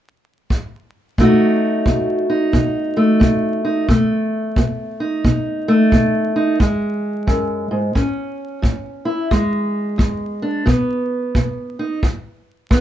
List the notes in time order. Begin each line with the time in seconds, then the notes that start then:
0.50 kick
1.18 B2 F#3 A3 D#4 F#4, kick
1.86 B2, kick
2.30 D#4
2.53 B2, kick
2.97 A3
3.20 B2, kick
3.65 D#4
3.88 B2 A3, kick
4.56 B2, kick
5.00 D#4
5.24 B2, kick
5.68 A3
5.92 B2, kick
6.36 D#4
6.60 E2 G#3, kick
7.27 F#2, kick
7.71 G#2
7.95 A2 C#4, kick
8.62 A2, kick
9.05 E4
9.31 E2 G#3, kick
9.98 E2, kick
10.42 D4
10.66 B2 B3, kick
11.35 B2, kick
11.79 D#4
12.03 E2, kick
12.71 E2 B3, kick